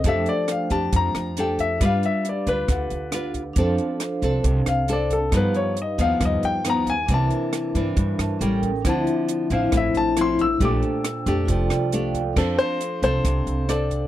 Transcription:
<<
  \new Staff \with { instrumentName = "Grand piano" } { \time 4/4 \key f \major \tempo 4 = 136 e''8 d''8 f''8 a''8 bes''4 g''8 e''8 | f''8 e''8 d''8 b'4. r4 | r2 r8 f''8 d''8 a'8 | b'8 des''8 dis''8 f''8 dis''8 g''8 bes''8 aes''8 |
a''4. r2 r8 | a''4. f''8 e''8 a''8 c'''8 e'''8 | d'''4 r2. | a'8 c''4 c''4. d''4 | }
  \new Staff \with { instrumentName = "Vibraphone" } { \time 4/4 \key f \major << { r1 | r1 | r1 | r1 |
r2 r8 a''8 g''4 | r1 | r2. f''8 g''8 | r1 | } \\ { <a d' c'' g''>1 | <d' g' b' f''>1 | <d' a' c'' f''>1 | <dis' g' b' f''>1 |
<d' bes' c'' e''>2. <cis' a' bes' g''>4 | <d' c'' e''>1 | <d' a' c'' g''>2 <f' a' d'' g''>2 | <d' a'>1 | } >> }
  \new Staff \with { instrumentName = "Nylon-string guitar" } { \time 4/4 \key f \major << { <d' g' a'>4. <d' g'>4. <d' g' a'>4 | <d' f' b'>4 r8 <d' f' b'>4. <d' f' b'>8 r8 | <c' d' a'>4 r8 <c' d' a'>4. <c' d' a'>8 r8 | <f b dis'>4 r8 <f b dis'>4. <f b dis'>8 r8 |
<e bes d'>4. <e bes d'>4. <g bes cis'>8 r8 | <f c' e'>4. <f c' e'>4. <f c' e'>8 r8 | <a d' g'>4 r8 <a d' g'>4. <a d' g'>8 r8 | <c' d' a'>4 r8 <c' d' a'>4. <c' d' a'>4 | } \\ { f2 f2 | g2 d2 | f2 c2 | g,2 g,2 |
c2 g,4 r4 | d2 a,2 | bes,2 f2 | f2 c2 | } >> }
  \new Staff \with { instrumentName = "Upright bass" } { \clef bass \time 4/4 \key f \major f,8 r4 f,8 f,8 f,4. | g,8 r4 d,8 d,8 d,4. | f,8 r4 c,8 c,8 c,4. | g,8 r4 dis,8 dis,8 dis,4. |
c,8 r4 g,8 g,8 g,8 a,,4 | d,8 r4 a,,8 a,,8 a,,4. | bes,,8 r4 f,8 f,,8 c,4. | f,8 r4 c,8 c,8 c,4. | }
  \new DrumStaff \with { instrumentName = "Drums" } \drummode { \time 4/4 <hh bd>8 hh8 <hh ss>8 <hh bd>8 <hh bd>8 <hh ss>8 hh8 <hh bd>8 | <hh bd ss>8 hh8 hh8 <hh bd>8 <hh bd ss>8 hh8 <hh ss>8 <hh bd>8 | <hh bd>8 hh8 <hh ss>8 <hh bd>8 <hh bd>8 <hh ss>8 hh8 <hh bd>8 | <hh bd ss>8 hh8 hh8 <hh bd>8 <hh bd ss>8 hh8 <hh ss>8 <hh bd>8 |
<hh bd>8 hh8 <hh ss>8 <hh bd>8 <hh bd>8 <hh ss>8 hh8 <hh bd>8 | <hh bd ss>8 hh8 hh8 <hh bd>8 <hh bd ss>8 hh8 <hh ss>8 <hh bd>8 | <hh bd>8 hh8 <hh ss>8 <hh bd>8 <hh bd>8 <hh ss>8 hh8 <hh bd>8 | <cymc bd ss>8 hh8 hh8 <hh bd>8 <hh bd ss>8 hh8 <hh ss>8 <hh bd>8 | }
>>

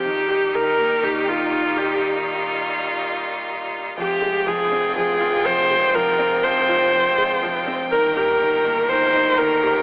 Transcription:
<<
  \new Staff \with { instrumentName = "Viola" } { \time 4/4 \key f \minor \tempo 4 = 122 g'4 bes'4 g'8 f'4 g'8 | r1 | g'4 aes'4 aes'4 c''4 | bes'4 c''2~ c''8 r8 |
bes'8 bes'4. c''4 bes'4 | }
  \new Staff \with { instrumentName = "String quartet" } { \time 4/4 \key f \minor << { g'1 | f'1 | g''1~ | g''1 |
bes'1 | } \\ { <bes, ees g ees'>1~ | <bes, ees g ees'>1 | <c aes f'>1~ | <c aes f'>1 |
<ees bes>1 | } >> }
  \new Staff \with { instrumentName = "Felt piano" } { \clef bass \time 4/4 \key f \minor ees8 g'8 ees8 bes8 ees8 ees'8 ees8 g'8 | r1 | f8 aes8 f8 c'8 f8 f'8 f8 aes8 | f8 c'8 f8 f'8 f8 aes8 f8 c'8 |
ees8 g'8 ees8 bes8 ees8 ees'8 ees8 g'8 | }
  \new Staff \with { instrumentName = "Double bass section" } { \clef bass \time 4/4 \key f \minor r1 | r1 | f,,1~ | f,,1 |
g,,1 | }
>>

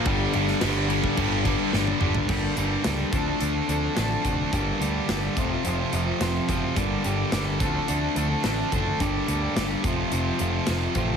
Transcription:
<<
  \new Staff \with { instrumentName = "Clean electric guitar" } { \time 4/4 \key g \minor \tempo 4 = 107 r1 | <g, d g bes d'>8 <d g bes d'>16 <g bes d'>16 <g, d g bes d'>16 <g bes d'>16 <d f c' d' a'>16 <c' d' a'>8 <c' d' a'>16 <f c' d' a'>16 <c' d' a'>16 <d f c' d' a'>8 <f c' d' a'>8 | <g, d g bes d' g'>8 <g bes d' g'>16 <g bes d' g'>16 <g, d g bes d' g'>16 <g bes d' g'>16 <f, c f a c' f'>16 <f a c' f'>8 <f a c' f'>16 <f a c' f'>16 <f a c' f'>16 <f, c f a c' f'>8 <f a c' f'>8 | <g, d g bes d' g'>8 <g bes d' g'>16 <g bes d' g'>16 <g, d g bes d' g'>16 <g bes d' g'>16 <d f c' d' a'>16 <c' d' a'>8 <c' d' a'>16 <f c' d' a'>16 <c' d' a'>16 <d f c' d' a'>8 <f c' d' a'>8 |
<g, d g bes d' g'>8 <g bes d' g'>16 <g bes d' g'>16 <g, d g bes d' g'>16 <g bes d' g'>16 <f, c f a c' f'>16 <f a c' f'>8 <f a c' f'>16 <f a c' f'>16 <f a c' f'>16 <f, c f a c' f'>8 <f a c' f'>8 | }
  \new Staff \with { instrumentName = "Distorted electric guitar" } { \clef bass \time 4/4 \key g \minor <g, d g>8 <g, d g>8 <g, d g>8 <g, d g>8 <g, d g>8 <g, d g>8 <g, d g>8 <g, d g>8 | <g, d g>8 <g, d g>8 <g, d g>8 <d a d'>8 <d a d'>8 <d a d'>8 <d a d'>8 <d a d'>8 | <g, d g>8 <g, d g>8 <g, d g>8 <f, c f>8 <f, c f>8 <f, c f>8 <f, c f>8 <f, c f>8 | <g, d g>8 <g, d g>8 <g, d g>8 <d a d'>8 <d a d'>8 <d a d'>8 <d a d'>8 <d a d'>8 |
<g, d g>8 <g, d g>8 <g, d g>8 <f, c f>8 <f, c f>8 <f, c f>8 <f, c f>8 <f, c f>8 | }
  \new Staff \with { instrumentName = "Distorted electric guitar" } { \clef bass \time 4/4 \key g \minor <g, d g>8 <g, d g>8 <g, d g>8 <g, d g>8 <g, d g>8 <g, d g>8 <g, d g>8 <g, d g>8 | <g, d g>8 <g, d g>8 <g, d g>8 <d a d'>8 <d a d'>8 <d a d'>8 <d a d'>8 <d a d'>8 | <g, d g>8 <g, d g>8 <g, d g>8 <f, c f>8 <f, c f>8 <f, c f>8 <f, c f>8 <f, c f>8 | <g, d g>8 <g, d g>8 <g, d g>8 <d a d'>8 <d a d'>8 <d a d'>8 <d a d'>8 <d a d'>8 |
<g, d g>8 <g, d g>8 <g, d g>8 <f, c f>8 <f, c f>8 <f, c f>8 <f, c f>8 <f, c f>8 | }
  \new Staff \with { instrumentName = "Distorted electric guitar" } { \clef bass \time 4/4 \key g \minor <g, d g>8 <g, d g>8 <g, d g>8 <g, d g>8 <g, d g>8 <g, d g>8 <g, d g>8 <g, d g>8 | r1 | r1 | r1 |
r1 | }
  \new Staff \with { instrumentName = "Picked electric bass" } { \clef bass \time 4/4 \key g \minor g,,8 g,,8 g,,4 g,,4 g,,8 g,,8 | g,,8 g,,8 cis,8 d,8 d,8 d,8 a,,8 f,,8 | g,,8 d,8 g,,8 f,,8 f,,8 f,,8 f,,8 fis,,8 | g,,8 g,,8 g,,8 d,8 d,8 d,8 a,,8 fis,,8 |
g,,8 d,8 g,,8 f,,8 f,,8 f,,8 f,,8 a,,8 | }
  \new DrumStaff \with { instrumentName = "Drums" } \drummode { \time 4/4 <cymc bd>8 cymc16 sn16 <cymc sn>8 cymc16 bd16 <cymc bd>8 <cymc bd>8 sn16 tommh16 toml16 tomfh16 | <cymc bd>8 hh8 <hh sn>8 <hh bd>8 hh8 hh8 <hh sn>8 <hh bd>8 | <hh bd>8 hh8 <hh sn>8 <hh bd>8 hh8 hh8 <hh sn>8 <hh bd>8 | <hh bd>8 hh8 <hh sn>8 <hh bd>8 hh8 hh8 <hh sn>8 <hh bd>8 |
<hh bd>8 hh8 <hh sn>8 <hh bd>8 hh8 hh8 <hh sn>8 <hh bd>8 | }
>>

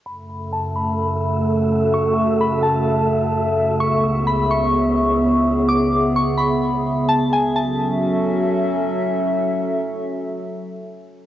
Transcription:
<<
  \new Staff \with { instrumentName = "Synth bell" } { \time 4/4 \key fis \minor \tempo 4 = 128 b''4 a''8 b''2~ b''8 | cis'''4 b''8 a''2~ a''8 | cis'''4 b''8 cis'''2~ cis'''8 | d'''4 cis'''8 b''4. a''8 gis''8 |
a''2. r4 | r1 | }
  \new Staff \with { instrumentName = "Synth texture" } { \time 4/4 \key fis \minor << { e''1~ | e''1~ | e''1 | r1 |
r1 | r1 | } \\ { <a fis'>1~ | <a fis'>1 | <cis' b'>1 | r1 |
r1 | r1 | } >> }
  \new Staff \with { instrumentName = "Ambient pad" } { \time 4/4 \key fis \minor << { <cis e''>1~ | <cis e''>1~ | <cis e''>1~ | <cis e''>1 |
<fis cis' fis' a' e''>1~ | <fis cis' fis' a' e''>1 | } \\ { <fis, a a'>1~ | <fis, a a'>1 | <cis, b gis'>1~ | <cis, b gis'>1 |
r1 | r1 | } >> }
>>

